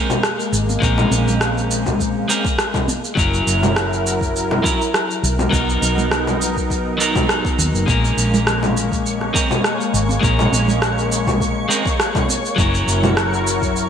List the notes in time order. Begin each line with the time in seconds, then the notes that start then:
Already playing: G#3 A#3 C4 C#4 A#4
0.10 low conga, shaker
0.23 cross-stick, shaker
0.40 shaker
0.53 G#1, shaker
0.69 high conga, shaker
0.80 A#1 G#3 C4 C#4 A#4, kick, shaker
0.98 low conga, shaker
1.11 A#1, high conga, shaker
1.28 low conga, shaker
1.41 cross-stick, shaker
1.58 shaker
1.71 shaker
1.86 kick, low conga, shaker
2.00 kick, shaker
2.28 G#3 C4 C#4 A#4, shaker
2.45 kick, shaker
2.59 cross-stick, shaker
2.74 kick, low conga, shaker
2.88 high conga, shaker
3.04 shaker
3.15 F#1 F#3 C#4 E4 A#4, kick, shaker
3.34 shaker
3.47 F#1, shaker
3.63 low conga, shaker
3.76 cross-stick, shaker
3.93 shaker
4.07 shaker
4.21 kick, shaker
4.36 shaker
4.51 cross-stick, high conga, low conga
4.63 F#3 C#4 E4 A#4, kick, shaker
4.81 shaker
4.94 cross-stick, shaker
5.11 shaker
5.23 B1 B3 D#4 A#4, shaker
5.39 high conga, low conga, shaker
5.51 B1 F#3 B3 D#4 A#4, kick, shaker
5.69 shaker
5.82 B1, high conga, shaker
5.98 low conga, shaker
6.11 cross-stick, shaker
6.27 low conga, shaker
6.42 shaker
6.57 kick, shaker
6.70 kick, shaker
6.98 F#3 B3 D#4 A#4, shaker
7.15 kick, low conga, shaker
7.29 F#1, cross-stick, shaker
7.45 kick, shaker
7.59 D#2, high conga, shaker
7.74 F#1, shaker
7.86 A#1 G#3 A#3 C#4 A#4 C#5 C#6, kick, shaker
8.05 shaker
8.17 A#1, shaker
8.34 low conga, shaker
8.47 cross-stick, shaker
8.63 low conga, shaker
8.77 shaker
8.92 kick, shaker
9.06 shaker
9.21 cross-stick, high conga
9.34 G#3 C4 C#4 A#4, kick, shaker
9.51 low conga, shaker
9.64 cross-stick, shaker
9.81 shaker
9.94 G#1, shaker
10.09 high conga, shaker
10.21 A#1 G#3 A#3 C#4 A#4, kick, shaker
10.39 low conga, shaker
10.53 A#1, high conga, shaker
10.68 low conga, shaker
10.82 cross-stick, shaker
10.98 shaker
11.12 shaker
11.27 kick, low conga, shaker
11.40 kick, shaker
11.68 G#3 C4 C#4 A#4, shaker
11.86 kick, shaker
12.00 cross-stick, shaker
12.15 kick, low conga, shaker
12.29 high conga, shaker
12.45 shaker
12.56 F#1 F#3 C#4 E4 A#4, kick, shaker
12.74 shaker
12.88 F#1, shaker
13.03 low conga, shaker
13.17 cross-stick, shaker
13.33 shaker
13.47 shaker
13.62 kick, shaker
13.76 shaker